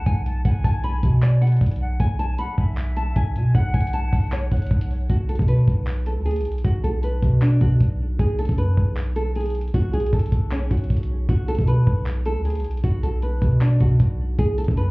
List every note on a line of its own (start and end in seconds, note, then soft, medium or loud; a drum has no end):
0.00 0.22 F#5 medium
0.06 0.44 B1 loud
0.06 0.24 G#5 medium
0.06 kick loud
0.06 closed hi-hat medium
0.26 0.44 A5 medium
0.26 closed hi-hat medium
0.45 0.64 B1 loud
0.45 0.63 F#5 medium
0.45 1.19 G#5 loud
0.45 kick loud
0.45 closed hi-hat medium
0.64 1.02 B1 loud
0.64 0.83 A5 medium
0.64 kick loud
0.64 closed hi-hat medium
0.84 1.20 B5 medium
0.84 closed hi-hat medium
1.03 1.59 B2 loud
1.03 kick loud
1.03 closed hi-hat medium
1.22 1.41 D5 medium
1.22 clap loud
1.22 closed hi-hat medium
1.41 1.96 F#5 medium
1.41 closed hi-hat medium
1.47 closed hi-hat medium
1.52 closed hi-hat medium
1.57 closed hi-hat soft
1.61 1.98 B1 loud
1.61 kick medium
1.61 closed hi-hat medium
1.66 closed hi-hat medium
1.71 closed hi-hat medium
1.76 closed hi-hat medium
1.81 1.99 F#5 medium
2.00 2.37 B1 loud
2.00 2.18 G#5 loud
2.00 kick loud
2.00 closed hi-hat medium
2.19 2.38 G#5 medium
2.19 2.37 A5 medium
2.19 closed hi-hat medium
2.38 2.57 F#5 medium
2.38 2.75 B5 medium
2.38 closed hi-hat medium
2.58 3.14 B1 loud
2.58 3.31 E5 medium
2.58 kick loud
2.77 clap loud
2.77 closed hi-hat medium
2.96 3.15 A5 medium
2.96 closed hi-hat medium
3.16 3.37 B1 loud
3.16 3.34 G#5 medium
3.16 kick loud
3.16 closed hi-hat medium
3.35 3.54 B2 loud
3.35 3.54 G#5 medium
3.35 closed hi-hat medium
3.55 3.73 B1 loud
3.55 3.73 F#5 loud
3.55 4.28 F#5 loud
3.55 kick loud
3.55 closed hi-hat medium
3.74 4.11 B1 loud
3.74 3.92 G#5 medium
3.74 kick loud
3.74 closed hi-hat medium
3.81 closed hi-hat medium
3.87 closed hi-hat loud
3.93 4.30 A5 medium
3.93 closed hi-hat medium
4.13 4.50 B1 loud
4.13 kick loud
4.13 open hi-hat medium
4.32 4.50 C#5 medium
4.32 clap loud
4.32 closed hi-hat medium
4.52 4.70 B1 loud
4.52 5.06 F#5 medium
4.52 kick loud
4.52 closed hi-hat soft
4.57 closed hi-hat medium
4.62 closed hi-hat medium
4.66 closed hi-hat medium
4.71 5.08 B1 loud
4.71 kick loud
4.71 closed hi-hat soft
4.81 closed hi-hat medium
4.91 open hi-hat medium
5.10 5.38 B1 loud
5.10 5.28 F#4 medium
5.10 kick loud
5.10 closed hi-hat medium
5.29 5.47 A4 medium
5.29 closed hi-hat medium
5.35 5.67 B2 loud
5.35 kick loud
5.35 closed hi-hat medium
5.42 closed hi-hat medium
5.48 5.85 B4 medium
5.48 closed hi-hat medium
5.68 6.18 B1 loud
5.68 kick medium
5.87 clap loud
5.87 closed hi-hat medium
6.06 6.25 A4 medium
6.06 closed hi-hat medium
6.17 6.42 D2 loud
6.25 6.44 G#4 medium
6.25 closed hi-hat medium
6.31 closed hi-hat medium
6.36 closed hi-hat medium
6.41 6.63 B1 loud
6.41 closed hi-hat medium
6.45 closed hi-hat medium
6.52 closed hi-hat medium
6.58 closed hi-hat medium
6.64 6.83 B1 loud
6.64 6.83 F#4 medium
6.64 kick loud
6.64 closed hi-hat medium
6.84 7.21 B1 loud
6.84 7.02 A4 medium
6.84 closed hi-hat medium
7.03 7.40 B4 medium
7.03 closed hi-hat medium
7.22 7.60 B2 loud
7.22 kick medium
7.22 closed hi-hat medium
7.42 7.60 D4 medium
7.42 clap loud
7.42 closed hi-hat medium
7.61 7.80 B2 loud
7.61 8.16 F#4 medium
7.61 kick loud
7.61 closed hi-hat medium
7.80 8.18 B1 loud
7.80 kick medium
7.80 closed hi-hat medium
8.19 8.48 B1 loud
8.19 8.38 G#4 medium
8.19 kick loud
8.19 closed hi-hat medium
8.39 8.57 A4 medium
8.39 closed hi-hat medium
8.45 8.76 F#2 loud
8.45 kick medium
8.45 closed hi-hat medium
8.52 closed hi-hat medium
8.58 8.94 B4 medium
8.58 closed hi-hat medium
8.77 9.70 B1 loud
8.77 kick medium
8.97 clap loud
8.97 closed hi-hat medium
9.16 9.34 A4 medium
9.16 closed hi-hat medium
9.36 9.54 G#4 medium
9.36 closed hi-hat medium
9.41 closed hi-hat medium
9.46 closed hi-hat medium
9.50 closed hi-hat medium
9.55 closed hi-hat medium
9.61 closed hi-hat medium
9.68 closed hi-hat medium
9.74 9.93 B1 loud
9.74 9.92 F#4 medium
9.74 kick loud
9.74 closed hi-hat medium
9.93 10.12 B1 loud
9.93 10.12 G#4 medium
9.93 closed hi-hat medium
10.00 closed hi-hat medium
10.06 closed hi-hat medium
10.13 10.31 B1 loud
10.13 10.49 A4 medium
10.13 kick loud
10.13 closed hi-hat medium
10.19 closed hi-hat medium
10.26 closed hi-hat medium
10.32 10.69 B1 loud
10.32 kick medium
10.32 closed hi-hat medium
10.51 10.70 C#4 medium
10.51 clap loud
10.51 closed hi-hat medium
10.71 10.89 B1 loud
10.71 11.25 F#4 medium
10.71 kick loud
10.71 closed hi-hat medium
10.77 closed hi-hat medium
10.84 closed hi-hat soft
10.90 11.27 B1 loud
10.90 kick medium
10.90 closed hi-hat medium
10.97 closed hi-hat medium
11.03 closed hi-hat medium
11.29 11.57 B1 loud
11.29 11.47 F#4 medium
11.29 kick loud
11.29 closed hi-hat medium
11.48 11.66 A4 medium
11.48 closed hi-hat medium
11.55 11.86 B2 loud
11.55 kick medium
11.55 closed hi-hat medium
11.61 closed hi-hat medium
11.67 12.04 B4 medium
11.67 closed hi-hat medium
11.87 12.37 B1 loud
11.87 kick loud
12.06 clap loud
12.06 closed hi-hat medium
12.25 12.44 A4 medium
12.25 closed hi-hat medium
12.36 12.61 D2 medium
12.45 12.63 G#4 medium
12.45 closed hi-hat medium
12.50 closed hi-hat medium
12.55 closed hi-hat medium
12.60 12.83 B1 loud
12.60 closed hi-hat medium
12.64 closed hi-hat medium
12.71 closed hi-hat medium
12.77 closed hi-hat medium
12.84 13.02 B1 loud
12.84 13.02 F#4 medium
12.84 kick loud
12.84 closed hi-hat medium
13.03 13.40 B1 loud
13.03 13.21 A4 medium
13.03 closed hi-hat medium
13.22 13.59 B4 medium
13.22 closed hi-hat medium
13.42 13.79 B2 loud
13.42 kick loud
13.42 closed hi-hat medium
13.61 13.79 D4 medium
13.61 clap loud
13.61 closed hi-hat medium
13.80 13.99 B2 loud
13.80 14.35 F#4 medium
13.80 kick loud
13.80 closed hi-hat medium
14.00 14.37 B1 loud
14.00 kick medium
14.00 closed hi-hat medium
14.39 14.67 B1 loud
14.39 14.57 G#4 loud
14.39 kick loud
14.39 closed hi-hat medium
14.58 14.76 A4 medium
14.58 closed hi-hat medium
14.64 14.91 F#2 loud
14.64 kick loud
14.64 closed hi-hat medium
14.71 closed hi-hat medium
14.77 14.91 B4 medium
14.77 closed hi-hat medium